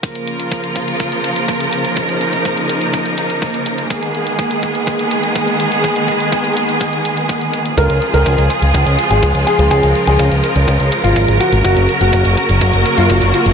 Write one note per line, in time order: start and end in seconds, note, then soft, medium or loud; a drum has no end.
0.03 3.86 C#3 medium
0.03 3.87 F3 medium
0.03 7.73 A#3 medium
0.03 1.95 F4 medium
0.03 3.86 A#4 medium
0.03 kick loud
0.03 closed hi-hat medium
0.15 closed hi-hat soft
0.27 closed hi-hat soft
0.40 closed hi-hat soft
0.52 kick loud
0.52 closed hi-hat medium
0.64 closed hi-hat soft
0.76 kick medium
0.76 closed hi-hat medium
0.88 closed hi-hat soft
1.00 kick loud
1.00 closed hi-hat medium
1.12 closed hi-hat soft
1.24 closed hi-hat medium
1.36 closed hi-hat soft
1.48 kick loud
1.48 closed hi-hat medium
1.60 closed hi-hat soft
1.73 closed hi-hat medium
1.85 closed hi-hat soft
1.97 3.88 D#4 medium
1.97 kick loud
1.97 closed hi-hat medium
2.09 closed hi-hat soft
2.21 closed hi-hat soft
2.33 closed hi-hat soft
2.45 kick loud
2.45 closed hi-hat medium
2.57 closed hi-hat soft
2.69 closed hi-hat medium
2.81 closed hi-hat soft
2.93 kick loud
2.93 closed hi-hat medium
3.06 closed hi-hat soft
3.18 closed hi-hat medium
3.30 closed hi-hat soft
3.42 kick loud
3.42 closed hi-hat medium
3.54 closed hi-hat soft
3.66 closed hi-hat medium
3.78 closed hi-hat soft
3.90 7.74 D#3 medium
3.90 7.74 G#3 medium
3.90 7.74 B3 medium
3.90 7.74 G#4 medium
3.90 kick loud
3.90 closed hi-hat medium
4.03 closed hi-hat soft
4.15 closed hi-hat soft
4.27 closed hi-hat soft
4.39 kick loud
4.39 closed hi-hat medium
4.51 closed hi-hat soft
4.63 kick medium
4.63 closed hi-hat medium
4.75 closed hi-hat soft
4.87 kick loud
4.87 closed hi-hat medium
4.99 closed hi-hat soft
5.11 closed hi-hat medium
5.23 closed hi-hat soft
5.36 kick loud
5.36 closed hi-hat medium
5.48 closed hi-hat soft
5.60 closed hi-hat medium
5.72 closed hi-hat soft
5.84 kick loud
5.84 closed hi-hat medium
5.96 closed hi-hat soft
6.08 kick medium
6.08 closed hi-hat soft
6.20 closed hi-hat soft
6.32 kick loud
6.32 closed hi-hat medium
6.45 closed hi-hat soft
6.57 closed hi-hat medium
6.69 closed hi-hat soft
6.81 kick loud
6.81 closed hi-hat medium
6.93 closed hi-hat soft
7.05 closed hi-hat medium
7.17 closed hi-hat soft
7.29 kick loud
7.29 closed hi-hat medium
7.41 closed hi-hat soft
7.54 closed hi-hat medium
7.66 closed hi-hat soft
7.77 7.87 C#2 medium
7.77 13.53 C#3 medium
7.77 11.61 F3 medium
7.77 11.61 G#3 medium
7.77 11.61 F4 medium
7.77 9.69 G#4 medium
7.77 8.00 A#4 medium
7.77 kick loud
7.77 closed hi-hat medium
7.90 7.99 C#2 medium
7.90 closed hi-hat soft
8.02 closed hi-hat soft
8.14 8.23 C#2 medium
8.14 8.36 A#4 medium
8.14 closed hi-hat soft
8.26 8.35 C#2 medium
8.26 kick loud
8.26 closed hi-hat medium
8.38 8.47 C#2 medium
8.38 closed hi-hat soft
8.50 kick medium
8.50 closed hi-hat medium
8.62 8.72 C#2 medium
8.62 closed hi-hat soft
8.74 8.84 C#2 loud
8.74 kick loud
8.74 closed hi-hat medium
8.86 8.96 C#2 medium
8.86 closed hi-hat soft
8.99 closed hi-hat medium
9.10 9.20 G#1 medium
9.10 9.33 G#4 medium
9.10 closed hi-hat soft
9.23 9.32 C#2 medium
9.23 kick loud
9.23 closed hi-hat medium
9.35 9.44 C#2 medium
9.35 closed hi-hat soft
9.47 9.62 G#4 medium
9.47 closed hi-hat medium
9.59 9.68 C#2 medium
9.59 closed hi-hat soft
9.71 9.80 C#2 medium
9.71 9.94 G#4 medium
9.71 13.53 A#4 medium
9.71 kick loud
9.71 closed hi-hat medium
9.83 9.93 C#2 medium
9.83 closed hi-hat soft
9.95 closed hi-hat soft
10.07 10.17 C#2 medium
10.07 10.30 G#4 medium
10.07 closed hi-hat soft
10.19 10.29 C#2 loud
10.19 kick loud
10.19 closed hi-hat medium
10.32 10.41 C#2 medium
10.32 closed hi-hat soft
10.44 closed hi-hat medium
10.56 10.65 C#2 medium
10.56 closed hi-hat soft
10.68 10.77 C#2 medium
10.68 kick loud
10.68 closed hi-hat medium
10.80 10.89 C#2 medium
10.80 closed hi-hat soft
10.92 closed hi-hat medium
11.04 11.14 G#1 medium
11.04 11.26 F4 medium
11.04 closed hi-hat soft
11.16 11.26 G#1 medium
11.16 kick loud
11.16 closed hi-hat medium
11.28 11.38 G#1 medium
11.28 closed hi-hat soft
11.40 11.55 F#4 medium
11.40 closed hi-hat medium
11.52 11.62 G#1 medium
11.52 closed hi-hat soft
11.64 11.74 F#1 medium
11.64 13.53 F#3 medium
11.64 13.53 A#3 medium
11.64 11.87 F#4 medium
11.64 13.53 F#4 medium
11.64 kick loud
11.64 closed hi-hat medium
11.77 11.86 F#1 medium
11.77 closed hi-hat soft
11.89 closed hi-hat soft
12.01 12.10 F#1 medium
12.01 12.23 F#4 medium
12.01 closed hi-hat soft
12.13 12.22 F#1 medium
12.13 kick loud
12.13 closed hi-hat medium
12.25 12.35 F#1 medium
12.25 closed hi-hat soft
12.37 kick medium
12.37 closed hi-hat medium
12.49 12.59 F#1 medium
12.49 closed hi-hat soft
12.61 12.71 F#1 loud
12.61 kick loud
12.61 closed hi-hat medium
12.74 12.83 F#1 medium
12.74 closed hi-hat soft
12.86 closed hi-hat medium
12.98 13.07 F#2 medium
12.98 13.20 F4 medium
12.98 closed hi-hat soft
13.10 13.19 F#1 medium
13.10 kick loud
13.10 closed hi-hat medium
13.22 13.31 F#1 medium
13.22 closed hi-hat soft
13.34 13.49 F4 medium
13.34 closed hi-hat medium
13.46 13.53 F#1 medium
13.46 closed hi-hat soft